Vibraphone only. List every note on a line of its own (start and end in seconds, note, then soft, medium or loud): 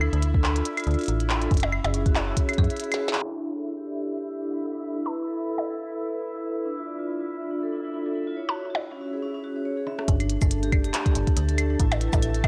0.01 0.12 D4 medium
0.13 0.21 D4 loud
0.23 0.33 D4 medium
0.35 0.43 A4 medium
0.44 0.54 D4 medium
0.56 0.64 F4 medium
0.65 0.76 D5 medium
0.77 0.86 F4 loud
0.99 1.07 F4 loud
1.20 1.28 D4 medium
1.30 1.40 D4 medium
1.42 1.50 A4 medium
1.51 1.62 C#4 medium
1.63 1.71 C#4 loud
1.72 1.83 C#4 medium
1.84 1.93 G#4 medium
1.94 2.04 C#4 medium
2.06 2.14 F#4 loud
2.15 2.26 C#5 medium
2.27 2.36 F#4 loud
2.49 2.57 F#4 loud
2.58 2.69 G#4 loud
2.70 2.78 G#4 medium
2.80 2.86 G#4 loud
3.01 3.07 F#4 medium
3.13 3.21 F#4 medium
3.22 3.33 D4 medium
3.34 3.43 D4 medium
3.44 3.54 D4 medium
3.56 3.64 A4 medium
3.65 3.76 D4 medium
3.77 3.85 G4 medium
3.87 3.97 D5 medium
3.99 4.08 G4 medium
4.20 4.28 G4 medium
4.42 4.50 D4 medium
4.51 4.61 D4 medium
4.63 4.71 A4 medium
4.72 4.83 D4 medium
4.84 4.93 D4 medium
4.94 5.04 E4 medium
5.06 5.14 B4 medium
5.15 5.26 E4 medium
5.27 5.36 A4 medium
5.37 5.47 E5 medium
5.49 5.58 A4 medium
5.70 5.78 A4 medium
5.92 6.00 E4 medium
6.01 6.12 E4 medium
6.13 6.21 B4 medium
6.22 6.33 E4 medium
6.34 6.43 E4 medium
6.44 6.54 E4 medium
6.56 6.64 B4 medium
6.65 6.76 D4 medium
6.77 6.86 F4 medium
6.87 6.97 D5 medium
6.99 7.08 F4 medium
7.20 7.28 F4 loud
7.42 7.50 D4 medium
7.51 7.62 D4 medium
7.63 7.71 A4 medium
7.72 7.83 D4 medium
7.84 7.93 D4 medium
7.94 8.04 D4 medium
8.06 8.14 A4 medium
8.15 8.26 D4 medium
8.27 8.36 F4 medium
8.37 8.47 C#5 medium
8.49 8.58 F#4 medium
8.70 8.78 F#4 medium
8.92 9.00 C#4 medium
9.01 9.11 C#4 medium
9.13 9.21 G#4 medium
9.22 9.33 C#4 medium
9.34 9.43 C#4 medium
9.44 9.50 F#4 medium
9.56 9.61 C#4 medium
9.65 9.72 C#5 medium
9.77 9.86 G#4 medium
9.87 9.97 E5 loud
9.99 10.04 C#4 medium
10.08 10.19 D4 medium
10.20 10.28 D4 loud
10.30 10.40 D4 medium
10.42 10.50 A4 medium
10.51 10.62 D4 medium
10.63 10.71 G4 loud
10.72 10.83 D5 medium
10.84 10.93 G4 loud
11.06 11.14 G4 loud
11.27 11.35 D4 medium
11.37 11.47 D4 medium
11.49 11.57 A4 medium
11.58 11.69 D4 medium
11.70 11.79 D4 loud
11.80 11.90 E4 medium
11.92 12.00 B4 medium
12.01 12.12 E4 medium
12.13 12.21 A4 loud
12.22 12.33 E5 medium
12.35 12.43 A4 loud